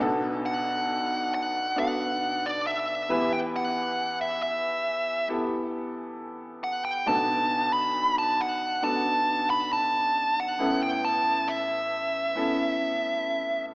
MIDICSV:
0, 0, Header, 1, 3, 480
1, 0, Start_track
1, 0, Key_signature, 2, "minor"
1, 0, Tempo, 882353
1, 3, Time_signature, 4, 2, 24, 8
1, 7475, End_track
2, 0, Start_track
2, 0, Title_t, "Lead electric guitar"
2, 0, Program_c, 0, 29
2, 249, Note_on_c, 0, 78, 80
2, 725, Note_off_c, 0, 78, 0
2, 732, Note_on_c, 0, 78, 92
2, 969, Note_off_c, 0, 78, 0
2, 976, Note_on_c, 0, 78, 96
2, 1338, Note_on_c, 0, 74, 79
2, 1340, Note_off_c, 0, 78, 0
2, 1451, Note_off_c, 0, 74, 0
2, 1453, Note_on_c, 0, 76, 91
2, 1810, Note_on_c, 0, 79, 91
2, 1818, Note_off_c, 0, 76, 0
2, 1841, Note_off_c, 0, 79, 0
2, 1938, Note_on_c, 0, 78, 104
2, 2268, Note_off_c, 0, 78, 0
2, 2292, Note_on_c, 0, 76, 86
2, 2399, Note_off_c, 0, 76, 0
2, 2408, Note_on_c, 0, 76, 79
2, 2864, Note_off_c, 0, 76, 0
2, 3611, Note_on_c, 0, 78, 74
2, 3723, Note_off_c, 0, 78, 0
2, 3725, Note_on_c, 0, 79, 78
2, 3847, Note_off_c, 0, 79, 0
2, 3849, Note_on_c, 0, 81, 101
2, 4205, Note_off_c, 0, 81, 0
2, 4207, Note_on_c, 0, 83, 100
2, 4428, Note_off_c, 0, 83, 0
2, 4453, Note_on_c, 0, 81, 90
2, 4571, Note_off_c, 0, 81, 0
2, 4573, Note_on_c, 0, 78, 82
2, 4807, Note_on_c, 0, 81, 95
2, 4815, Note_off_c, 0, 78, 0
2, 5167, Note_off_c, 0, 81, 0
2, 5169, Note_on_c, 0, 83, 101
2, 5289, Note_off_c, 0, 83, 0
2, 5291, Note_on_c, 0, 81, 91
2, 5657, Note_on_c, 0, 78, 81
2, 5658, Note_off_c, 0, 81, 0
2, 5888, Note_off_c, 0, 78, 0
2, 5890, Note_on_c, 0, 79, 81
2, 6009, Note_on_c, 0, 81, 82
2, 6010, Note_off_c, 0, 79, 0
2, 6248, Note_on_c, 0, 76, 75
2, 6253, Note_off_c, 0, 81, 0
2, 7424, Note_off_c, 0, 76, 0
2, 7475, End_track
3, 0, Start_track
3, 0, Title_t, "Upright piano"
3, 0, Program_c, 1, 0
3, 0, Control_c, 1, 64, 127
3, 0, Note_on_c, 1, 35, 72
3, 0, Note_on_c, 1, 47, 73
3, 0, Note_on_c, 1, 59, 84
3, 0, Note_on_c, 1, 62, 73
3, 1, Note_on_c, 1, 66, 81
3, 4, Note_on_c, 1, 69, 91
3, 11, Control_c, 1, 64, 0
3, 110, Control_c, 1, 64, 127
3, 911, Note_off_c, 1, 59, 0
3, 913, Note_off_c, 1, 62, 0
3, 914, Note_off_c, 1, 66, 0
3, 915, Note_off_c, 1, 69, 0
3, 958, Note_on_c, 1, 59, 73
3, 958, Note_on_c, 1, 62, 66
3, 963, Note_on_c, 1, 66, 69
3, 965, Note_on_c, 1, 69, 75
3, 1659, Note_off_c, 1, 35, 0
3, 1659, Note_off_c, 1, 47, 0
3, 1670, Note_off_c, 1, 59, 0
3, 1679, Note_on_c, 1, 59, 70
3, 1681, Note_off_c, 1, 62, 0
3, 1683, Note_off_c, 1, 66, 0
3, 1684, Note_off_c, 1, 69, 0
3, 1684, Note_on_c, 1, 52, 62
3, 1684, Note_on_c, 1, 64, 63
3, 1685, Note_on_c, 1, 40, 65
3, 1686, Note_on_c, 1, 67, 65
3, 1688, Note_on_c, 1, 71, 88
3, 1691, Control_c, 1, 64, 0
3, 1778, Control_c, 1, 64, 127
3, 2593, Note_off_c, 1, 59, 0
3, 2595, Note_off_c, 1, 64, 0
3, 2596, Note_off_c, 1, 67, 0
3, 2597, Note_off_c, 1, 71, 0
3, 2874, Note_on_c, 1, 59, 68
3, 2878, Note_on_c, 1, 64, 60
3, 2879, Note_on_c, 1, 67, 63
3, 2883, Note_on_c, 1, 69, 75
3, 3582, Note_off_c, 1, 40, 0
3, 3582, Note_off_c, 1, 52, 0
3, 3790, Note_off_c, 1, 59, 0
3, 3792, Note_off_c, 1, 64, 0
3, 3793, Note_off_c, 1, 67, 0
3, 3795, Note_off_c, 1, 69, 0
3, 3840, Note_on_c, 1, 59, 74
3, 3843, Note_on_c, 1, 62, 61
3, 3844, Note_on_c, 1, 35, 58
3, 3845, Note_on_c, 1, 47, 61
3, 3847, Note_on_c, 1, 66, 67
3, 3849, Control_c, 1, 64, 0
3, 3849, Note_on_c, 1, 69, 76
3, 3956, Control_c, 1, 64, 127
3, 4754, Note_off_c, 1, 59, 0
3, 4755, Note_off_c, 1, 62, 0
3, 4757, Note_off_c, 1, 66, 0
3, 4758, Note_off_c, 1, 69, 0
3, 4800, Note_on_c, 1, 59, 69
3, 4802, Note_on_c, 1, 62, 65
3, 4803, Note_on_c, 1, 66, 67
3, 4807, Note_on_c, 1, 69, 76
3, 5713, Note_off_c, 1, 59, 0
3, 5714, Note_off_c, 1, 62, 0
3, 5715, Note_off_c, 1, 66, 0
3, 5717, Note_off_c, 1, 69, 0
3, 5742, Note_off_c, 1, 35, 0
3, 5742, Note_off_c, 1, 47, 0
3, 5760, Note_on_c, 1, 59, 72
3, 5762, Note_on_c, 1, 61, 60
3, 5764, Note_on_c, 1, 33, 60
3, 5764, Note_on_c, 1, 45, 59
3, 5765, Note_on_c, 1, 64, 64
3, 5768, Note_on_c, 1, 69, 79
3, 5769, Control_c, 1, 64, 0
3, 5868, Control_c, 1, 64, 127
3, 6673, Note_off_c, 1, 59, 0
3, 6674, Note_off_c, 1, 61, 0
3, 6676, Note_off_c, 1, 64, 0
3, 6677, Note_off_c, 1, 69, 0
3, 6720, Note_on_c, 1, 59, 67
3, 6722, Note_on_c, 1, 61, 64
3, 6726, Note_on_c, 1, 64, 65
3, 6730, Note_on_c, 1, 69, 82
3, 7475, Note_off_c, 1, 33, 0
3, 7475, Note_off_c, 1, 45, 0
3, 7475, Note_off_c, 1, 59, 0
3, 7475, Note_off_c, 1, 61, 0
3, 7475, Note_off_c, 1, 64, 0
3, 7475, Note_off_c, 1, 69, 0
3, 7475, End_track
0, 0, End_of_file